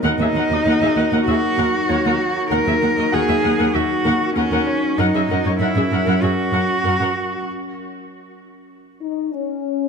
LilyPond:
<<
  \new Staff \with { instrumentName = "Grand piano" } { \time 4/4 \key dis \phrygian \tempo 4 = 97 ais'2~ ais'8 r8 cis''4~ | cis''4 <fis' fis''>2~ <fis' fis''>8 cis''8~ | cis''2~ cis''8 r4. | r1 | }
  \new Staff \with { instrumentName = "Viola section" } { \time 4/4 \key dis \phrygian <ais' fis''>16 <gis' e''>16 <ais' fis''>16 <fis' dis''>16 <ais' fis''>16 <gis' e''>16 <ais' fis''>16 <ais' fis''>16 <gis' e''>16 r16 <ais' fis''>16 r16 <ais' fis''>16 <ais' fis''>16 r8 | <ais' fis''>16 <gis' e''>16 <ais' fis''>16 <fis' dis''>16 <ais' fis''>16 <gis' e''>16 <ais' fis''>16 <ais' fis''>16 <gis' e''>16 r16 <ais' fis''>16 r16 <ais' fis''>16 <ais' fis''>16 r8 | <ais' fis''>16 <gis' e''>16 <ais' fis''>16 <fis' cis''>16 <ais' fis''>16 <gis' e''>16 <ais' fis''>16 <ais' fis''>16 <gis' e''>16 r16 <ais' fis''>16 r16 <ais' fis''>16 <ais' fis''>16 r8 | r1 | }
  \new Staff \with { instrumentName = "Cello" } { \time 4/4 \key dis \phrygian dis'2 fis'2 | ais'4 gis'4 fis'4 cis'4 | dis'4 e'4 fis'2 | r1 | }
  \new Staff \with { instrumentName = "Ambient pad" } { \time 4/4 \key dis \phrygian <fis dis' fis' ais'>1~ | <fis dis' fis' ais'>1 | <fis cis' fis' ais'>1 | r1 | }
  \new Staff \with { instrumentName = "French horn section" } { \time 4/4 \key dis \phrygian r1 | r1 | r1 | r2 r8 dis'8 cis'4 | }
  \new Staff \with { instrumentName = "Cello section" } { \clef bass \time 4/4 \key dis \phrygian dis,16 dis,16 dis,16 dis,16 dis,16 dis,16 dis,16 dis,16 dis,16 r16 dis,16 r16 dis,16 dis,16 r8 | dis,16 dis,16 dis,16 dis,16 dis,16 dis,16 dis,16 dis,16 dis,16 r16 dis,16 r16 dis,16 dis,16 r8 | fis,16 fis,16 fis,16 fis,16 fis,16 fis,16 fis,16 fis,16 fis,16 r16 fis,16 r16 fis,16 fis,16 r8 | r1 | }
>>